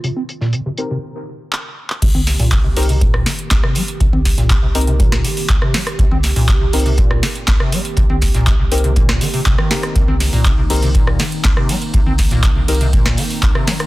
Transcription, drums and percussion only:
0.04 closed hi-hat medium
0.29 closed hi-hat medium
0.41 snare soft
0.53 closed hi-hat medium
0.78 closed hi-hat medium
1.53 clap loud
1.90 clap medium
2.02 kick loud
2.02 closed hi-hat medium
2.02 crash loud
2.15 mid tom medium
2.27 snare medium
2.27 snare soft
2.27 closed hi-hat medium
2.27 open hi-hat loud
2.40 open hi-hat medium
2.52 kick loud
2.52 snare loud
2.52 clap loud
2.52 closed hi-hat medium
2.77 open hi-hat loud
2.77 open hi-hat medium
2.83 closed hi-hat medium
2.89 closed hi-hat medium
3.01 kick loud
3.01 closed hi-hat medium
3.14 cross-stick medium
3.26 snare medium
3.26 closed hi-hat medium
3.26 open hi-hat loud
3.39 closed hi-hat medium
3.51 kick loud
3.51 snare medium
3.51 snare loud
3.51 clap loud
3.51 closed hi-hat medium
3.63 cross-stick medium
3.75 closed hi-hat medium
3.75 open hi-hat loud
3.88 closed hi-hat medium
4.00 kick loud
4.00 closed hi-hat medium
4.13 mid tom medium
4.25 kick medium
4.25 snare soft
4.25 closed hi-hat medium
4.25 open hi-hat loud
4.38 snare soft
4.38 closed hi-hat medium
4.50 kick loud
4.50 snare loud
4.50 clap loud
4.50 closed hi-hat medium
4.50 closed hi-hat loud
4.75 closed hi-hat medium
4.75 open hi-hat loud
4.81 closed hi-hat medium
4.87 closed hi-hat medium
5.00 kick loud
5.00 closed hi-hat medium
5.00 mid tom medium
5.12 cross-stick medium
5.12 snare medium
5.24 closed hi-hat medium
5.24 open hi-hat loud
5.37 open hi-hat medium
5.49 kick loud
5.49 snare loud
5.49 clap loud
5.49 closed hi-hat medium
5.62 cross-stick medium
5.74 snare medium
5.74 closed hi-hat medium
5.74 open hi-hat loud
5.87 cross-stick medium
5.87 closed hi-hat medium
5.87 closed hi-hat soft
5.99 kick loud
5.99 closed hi-hat medium
6.11 mid tom medium
6.23 snare medium
6.23 snare soft
6.23 closed hi-hat medium
6.23 open hi-hat loud
6.36 open hi-hat medium
6.48 kick loud
6.48 snare loud
6.48 clap loud
6.48 closed hi-hat loud
6.48 closed hi-hat medium
6.73 open hi-hat medium
6.73 open hi-hat loud
6.80 closed hi-hat medium
6.86 closed hi-hat medium
6.98 kick loud
6.98 closed hi-hat medium
7.11 cross-stick medium
7.22 snare medium
7.22 closed hi-hat medium
7.22 open hi-hat loud
7.35 closed hi-hat soft
7.48 kick loud
7.48 snare loud
7.48 snare medium
7.48 clap loud
7.48 closed hi-hat medium
7.60 cross-stick medium
7.72 closed hi-hat medium
7.72 open hi-hat loud
7.85 closed hi-hat medium
7.97 kick loud
7.97 closed hi-hat medium
8.10 mid tom medium
8.21 kick medium
8.21 snare soft
8.21 closed hi-hat medium
8.21 open hi-hat loud
8.34 snare soft
8.34 closed hi-hat medium
8.46 kick loud
8.46 snare loud
8.46 clap loud
8.46 closed hi-hat medium
8.72 closed hi-hat medium
8.72 open hi-hat loud
8.78 closed hi-hat medium
8.84 closed hi-hat medium
8.96 kick loud
8.96 closed hi-hat medium
8.96 mid tom loud
9.09 cross-stick medium
9.09 snare medium
9.21 closed hi-hat medium
9.21 open hi-hat loud
9.34 open hi-hat medium
9.46 kick loud
9.46 snare loud
9.46 clap loud
9.46 closed hi-hat medium
9.58 cross-stick medium
9.70 snare medium
9.70 closed hi-hat medium
9.70 open hi-hat loud
9.83 cross-stick medium
9.83 closed hi-hat soft
9.83 closed hi-hat medium
9.96 kick loud
9.96 closed hi-hat medium
10.08 mid tom medium
10.20 snare soft
10.20 closed hi-hat medium
10.20 open hi-hat loud
10.20 ride medium
10.33 open hi-hat medium
10.45 kick loud
10.45 snare loud
10.45 clap loud
10.45 closed hi-hat medium
10.70 open hi-hat medium
10.70 open hi-hat loud
10.70 ride medium
10.76 closed hi-hat medium
10.83 closed hi-hat medium
10.95 kick loud
10.95 closed hi-hat medium
11.07 cross-stick medium
11.19 snare medium
11.19 closed hi-hat medium
11.19 open hi-hat loud
11.19 ride medium
11.32 closed hi-hat medium
11.44 kick loud
11.44 snare loud
11.44 snare medium
11.44 clap loud
11.44 closed hi-hat medium
11.57 cross-stick medium
11.69 closed hi-hat medium
11.69 open hi-hat loud
11.69 ride medium
11.82 closed hi-hat medium
11.94 kick loud
11.94 closed hi-hat medium
12.06 mid tom medium
12.18 kick medium
12.18 snare soft
12.18 closed hi-hat medium
12.18 open hi-hat medium
12.18 ride medium
12.31 snare medium
12.31 closed hi-hat medium
12.43 kick loud
12.43 snare loud
12.43 clap loud
12.43 closed hi-hat medium
12.68 closed hi-hat medium
12.68 open hi-hat loud
12.68 ride medium
12.75 closed hi-hat medium
12.81 closed hi-hat medium
12.93 kick loud
12.93 closed hi-hat medium
12.93 mid tom medium
13.06 cross-stick medium
13.06 snare medium
13.17 closed hi-hat medium
13.17 open hi-hat loud
13.17 ride medium
13.30 open hi-hat medium
13.43 kick loud
13.43 snare loud
13.43 clap loud
13.43 closed hi-hat medium
13.55 cross-stick medium
13.67 snare medium
13.67 closed hi-hat medium
13.67 open hi-hat loud
13.67 ride medium
13.80 cross-stick medium
13.80 closed hi-hat soft
13.80 closed hi-hat medium

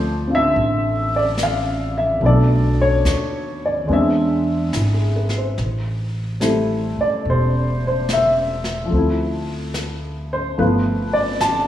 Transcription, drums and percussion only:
0.55 brush sweep soft
1.38 snare soft
1.38 hi-hat pedal soft
2.22 brush sweep soft
3.05 snare soft
3.05 hi-hat pedal soft
3.89 brush sweep soft
4.73 snare soft
4.73 hi-hat pedal soft
5.29 snare soft
5.58 brush sweep soft
5.58 snare soft
6.41 snare soft
6.41 hi-hat pedal soft
7.25 brush sweep soft
8.09 snare soft
8.09 hi-hat pedal soft
8.64 snare soft
8.91 brush sweep soft
9.74 snare soft
9.74 hi-hat pedal soft
10.58 brush sweep soft
11.40 snare soft
11.40 hi-hat pedal soft

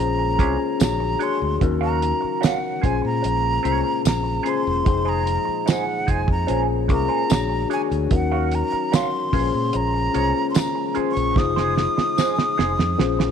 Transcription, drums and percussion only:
0.39 kick loud
0.39 closed hi-hat medium
0.80 snare loud
0.80 closed hi-hat loud
0.80 tambourine loud
1.21 closed hi-hat medium
1.61 kick loud
1.61 closed hi-hat medium
2.02 closed hi-hat medium
2.43 snare loud
2.43 closed hi-hat medium
2.43 tambourine medium
2.83 kick loud
2.83 closed hi-hat medium
3.24 closed hi-hat medium
3.65 closed hi-hat medium
4.05 snare loud
4.05 closed hi-hat loud
4.05 tambourine medium
4.46 closed hi-hat medium
4.86 kick loud
4.86 closed hi-hat medium
5.27 closed hi-hat medium
5.67 snare loud
5.67 closed hi-hat medium
5.67 tambourine medium
6.08 kick medium
6.08 closed hi-hat medium
6.28 kick medium
6.48 closed hi-hat medium
6.89 kick loud
6.89 closed hi-hat medium
7.30 snare loud
7.30 closed hi-hat loud
7.30 tambourine medium
7.71 closed hi-hat medium
7.92 closed hi-hat soft
8.11 kick loud
8.11 closed hi-hat medium
8.51 closed hi-hat medium
8.93 snare loud
8.93 closed hi-hat medium
8.93 tambourine medium
9.33 kick loud
9.33 open hi-hat medium
9.73 closed hi-hat loud
10.14 closed hi-hat medium
10.55 snare loud
10.55 closed hi-hat loud
10.55 tambourine medium
10.95 closed hi-hat medium
11.17 closed hi-hat soft
11.36 kick loud
11.36 snare medium
11.57 snare medium
11.77 snare medium
11.98 snare medium
12.18 snare medium
12.18 tambourine medium
12.38 snare medium
12.59 snare medium
12.79 snare medium
12.99 snare medium
13.20 snare medium

